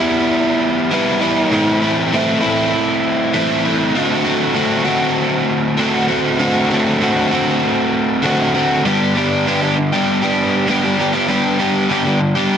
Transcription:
0.00 E3 G3 B3 E4
0.91 E3 G3 B3 E4
1.21 E3 G3 B3 E4
1.51 A2 E3 A3 C4 E4
1.82 A3 C4 E4
2.13 E3 A3 C4 E4
2.41 A3 C4 E4
3.34 E3 A3 C4 E4
3.64 A3 C4 E4
3.95 D3 A3 C4 F#4
4.25 A3 C4 F#4
4.54 D3 A3 C4 F#4
4.85 A3 C4 F#4
5.77 D3 A3 C4 F#4
6.08 A3 C4 F#4
6.39 D3 A3 C4 F#4
6.70 A3 C4 F#4
7.01 D3 A3 C4 F#4
7.31 A3 C4 F#4
8.22 D3 A3 C4 F#4
8.54 A3 C4 F#4
8.85 G2 D3 G3 B3 D4 G4
9.16 G3 B3 D4 G4
9.46 G2 D3 G3 B3 D4 G4
9.62 G3 B3 D4 G4
9.78 muted overdriven electric guitar stroke
9.92 G3 B3 D4 G4
10.22 G3 B3 D4 G4
10.67 G2 D3 G3 B3 D4 G4
10.84 G3 B3 D4 G4
10.98 G3 B3 D4 G4
11.13 G3 B3 D4 G4
11.28 G2 D3 G3 B3 D4 G4
11.59 G3 B3 D4 G4
11.89 G2 D3 G3 B3 D4 G4
12.04 G3 B3 D4 G4
12.20 muted overdriven electric guitar stroke
12.35 G3 B3 D4 G4

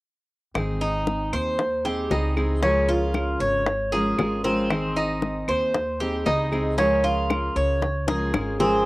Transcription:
0.55 G#1 D#3 C4 D#4 G#4, high bongo, claves
0.81 D#4, high bongo
1.07 high bongo
1.33 D#2 C5, claves
1.59 muted steel-string acoustic guitar stroke, high bongo
1.85 G3 C4 D#4 G4 G#4, high bongo
2.10 C#2 G3 C4 D#4 G#4, high bongo, low bongo
2.36 G3 C4 D#4 G#4, high bongo, claves
2.62 C#3 F3 G#3 C#4 F4 A#4, high bongo
2.88 F4, high bongo
3.14 high bongo, claves
3.40 G#1 C#5
3.66 muted steel-string acoustic guitar stroke, high bongo
3.92 F3 G#3 C#4 F4 G#4 A#4, high bongo
4.18 G#1 G#3 C#4 F4 A#4, high bongo, low bongo, claves
4.43 F3 G#3 C4 C#4 F4 A#4, high bongo
4.70 D#3 C4 D#4 G#4, high bongo, claves
4.96 D#4, high bongo
5.22 high bongo
5.48 D#2 C5, claves
5.74 muted steel-string acoustic guitar stroke, high bongo
6.00 G3 C4 D#4 G4 G#4, high bongo
6.25 C#2 G3 C4 D#4 G#4, high bongo, low bongo
6.52 G3 C4 D#4 G#4, high bongo, claves
6.77 C#3 F3 G#3 C#4 F4 A#4, high bongo
7.04 F4, high bongo
7.30 high bongo, claves
7.56 C#2 C#5
7.81 muted steel-string acoustic guitar stroke, high bongo
8.07 F3 G#3 C#4 F4 G#4 A#4, high bongo
8.33 G#1 G#3 C#4 F4 A#4, high bongo, claves
8.59 F3 G#3 C4 C#4 F4 G#4 A#4, low bongo

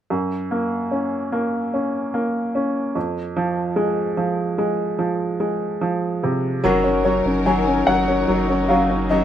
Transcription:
0.10 F#2
0.51 A#3
0.91 C#4
1.32 A#3
1.74 C#4
2.14 A#3
2.55 C#4
2.95 F2
3.36 F3
3.76 G#3
4.17 F3
4.58 G#3
4.99 F3
5.40 G#3
5.81 F3
6.23 C3
6.64 F#1 D#3 F#3 C#4 D#4 F#4 A#4
6.84 C#4
7.04 F#3 C#4 F#4 A#4 C#5
7.25 F#1 C#4
7.45 D#3 F#3 C#4 F#4 A#4 G#5
7.67 C#4
7.87 F#1 F#3 F#5
8.08 C#4
8.28 F#1 F#3
8.49 C#4
8.69 F#3 C#4 F#4 A#4 F5
8.90 C#4
9.09 D#3 F#3 C#4 F#4 A#4 D#5

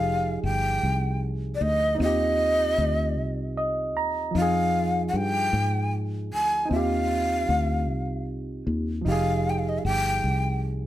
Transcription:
Already playing: F1 F3 D#4 G4 G#4 F5
0.43 G1 G5
0.83 C2
1.55 D5
1.61 D2 D#5
1.95 C4 D#4
2.00 D#2 F4 D#5
2.06 G4
2.78 D2
3.18 C2
3.57 D#5
3.95 D#2 A#5
4.31 F2 F3 D#4
4.37 F4 F5
4.42 G#4
5.08 F#5
5.13 G2 G5
5.53 G#2
6.32 D2 G#5
6.66 C4 D#4
6.71 D#2 F4 F5
6.76 G4
7.49 D2
7.88 C2
8.67 D#2
9.02 F3 D#4
9.06 F1 G4 F5
9.12 G#4
9.50 G5
9.59 F5
9.69 D#5
9.78 F5
9.85 G1 G5
10.24 C2

